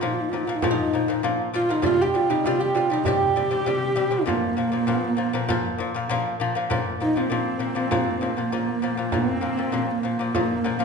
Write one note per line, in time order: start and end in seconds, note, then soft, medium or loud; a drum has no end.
0.01 0.26 A#2 medium
0.01 0.27 F3 loud
0.01 frame drum medium
0.06 0.15 D#4 medium
0.13 0.22 F4 medium
0.21 0.30 D#4 medium
0.29 0.45 A#2 medium
0.29 0.38 F4 medium
0.29 frame drum soft
0.34 0.46 F3 medium
0.34 0.46 D#4 medium
0.44 0.60 A#2 medium
0.44 0.57 F4 medium
0.49 0.61 F3 medium
0.55 0.65 D#4 medium
0.62 0.87 A#2 medium
0.62 0.88 F3 loud
0.62 1.55 F4 medium
0.62 0.70 F4 medium
0.62 frame drum medium
0.69 1.23 D#4 medium
0.69 1.70 D#4 medium
0.93 1.06 A#2 medium
0.93 1.06 F3 medium
0.93 frame drum soft
1.08 1.21 A#2 medium
1.08 1.22 F3 medium
1.23 1.48 A#2 medium
1.23 1.49 F3 loud
1.23 frame drum medium
1.54 1.66 A#2 medium
1.54 1.67 F3 medium
1.54 1.72 F4 medium
1.54 1.86 F4 medium
1.54 frame drum soft
1.69 1.82 A#2 medium
1.69 1.82 F3 medium
1.69 2.30 D#4 medium
1.69 1.87 D#4 loud
1.82 2.08 C3 medium
1.82 2.09 G3 loud
1.82 2.03 F4 loud
1.82 frame drum medium
1.86 2.46 F4 medium
2.02 2.60 G4 medium
2.02 2.17 G4 medium
2.14 2.27 C3 medium
2.14 2.27 G3 medium
2.14 2.31 F4 medium
2.14 frame drum soft
2.30 2.42 C3 medium
2.30 2.43 G3 medium
2.30 2.48 D#4 medium
2.30 2.93 D#4 medium
2.44 2.70 C3 loud
2.44 2.71 G3 loud
2.44 2.61 F4 medium
2.44 2.76 F4 medium
2.44 frame drum medium
2.60 2.77 G4 medium
2.60 3.07 G4 medium
2.75 2.88 C3 medium
2.75 2.88 G3 medium
2.75 2.91 F4 medium
2.75 5.29 F4 medium
2.75 frame drum soft
2.90 3.03 C3 medium
2.90 3.04 G3 medium
2.90 3.06 D#4 medium
2.90 5.64 D#4 medium
3.05 3.30 C3 medium
3.05 3.31 G3 loud
3.05 4.28 G4 loud
3.05 5.43 G4 medium
3.05 frame drum medium
3.36 3.49 C3 medium
3.36 3.49 G3 medium
3.36 frame drum soft
3.51 3.64 C3 medium
3.51 3.64 G3 medium
3.66 3.91 C3 medium
3.66 3.92 G3 medium
3.66 frame drum medium
3.96 4.09 C3 medium
3.96 4.09 G3 medium
3.96 frame drum soft
4.11 4.24 C3 medium
4.11 4.24 G3 medium
4.26 4.51 A#2 medium
4.26 4.52 F3 medium
4.26 4.92 A#3 loud
4.26 4.92 A#3 medium
4.26 frame drum medium
4.57 4.70 A#2 medium
4.57 4.70 F3 medium
4.57 frame drum soft
4.72 4.85 A#2 medium
4.72 4.85 F3 medium
4.87 5.12 A#2 medium
4.87 5.12 F3 loud
4.87 frame drum medium
4.92 5.09 B3 loud
4.92 5.09 B3 medium
5.09 5.28 A#3 loud
5.09 5.27 A#3 medium
5.17 5.30 A#2 medium
5.17 5.31 F3 medium
5.27 5.44 B3 medium
5.27 5.46 B3 loud
5.33 5.46 A#2 medium
5.33 5.47 F3 medium
5.44 7.50 A#3 medium
5.44 6.09 A#3 loud
5.49 5.73 A#2 loud
5.49 5.74 F3 loud
5.49 frame drum medium
5.79 5.91 A#2 medium
5.79 5.92 F3 medium
5.79 frame drum soft
5.94 6.07 A#2 medium
5.94 6.07 F3 medium
6.10 6.34 A#2 loud
6.10 6.35 F3 loud
6.10 frame drum medium
6.40 6.52 A#2 medium
6.40 6.53 F3 loud
6.40 frame drum soft
6.55 6.67 A#2 medium
6.55 6.68 F3 medium
6.70 6.94 A#2 loud
6.70 6.95 F3 loud
6.70 10.85 A#3 medium
6.70 frame drum medium
7.00 7.13 A#2 medium
7.00 7.13 F3 medium
7.00 7.19 D#4 loud
7.16 7.28 A#2 medium
7.16 7.29 F3 medium
7.16 8.40 C4 medium
7.16 frame drum soft
7.30 7.55 A#2 medium
7.30 7.56 F3 loud
7.30 frame drum soft
7.59 7.73 A#2 medium
7.59 7.73 F3 medium
7.59 frame drum soft
7.75 7.88 A#2 medium
7.75 7.88 F3 medium
7.91 8.16 A#2 loud
7.91 8.16 F3 loud
7.91 frame drum medium
8.21 8.34 A#2 medium
8.21 8.34 F3 medium
8.21 frame drum soft
8.37 8.49 A#2 medium
8.37 8.50 F3 medium
8.37 9.16 A#3 medium
8.37 frame drum soft
8.52 8.77 A#2 medium
8.52 8.77 F3 medium
8.52 frame drum medium
8.82 8.95 A#2 medium
8.82 8.95 F3 medium
8.97 9.10 A#2 medium
8.97 9.10 F3 medium
9.12 9.37 A#2 medium
9.12 9.37 F3 medium
9.12 9.92 C4 medium
9.12 frame drum medium
9.41 9.54 A#2 medium
9.41 9.55 F3 medium
9.57 9.70 A#2 medium
9.57 9.71 F3 medium
9.57 frame drum soft
9.72 9.97 A#2 medium
9.72 9.98 F3 medium
9.72 frame drum medium
9.91 10.85 A#3 medium
10.03 10.16 A#2 medium
10.03 10.16 F3 medium
10.03 frame drum soft
10.19 10.31 A#2 medium
10.19 10.32 F3 medium
10.34 10.59 A#2 medium
10.34 10.59 F3 medium
10.34 frame drum medium
10.64 10.77 A#2 medium
10.64 10.77 F3 medium
10.64 frame drum medium
10.79 10.85 A#2 medium
10.79 10.85 F3 medium
10.79 frame drum soft